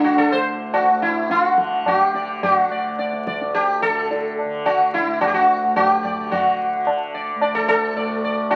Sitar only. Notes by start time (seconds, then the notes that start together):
0.04 F#4
0.18 A4
0.32 C5
0.74 F#4
1.02 E4
1.31 F4
1.46 F#4
1.88 F#4
1.99 G4
2.15 D5
2.43 F#4
2.71 D5
2.99 D5
3.27 D5
3.54 G4
3.82 A4
4.66 F#4
4.94 E4
5.21 F#4
5.27 G4
5.34 F#4
5.76 F#4
5.87 G4
6.05 D5
6.31 F#4
7.14 D5
7.42 D5
7.55 A4
7.68 A4
7.97 D5
8.24 D5
8.51 F#4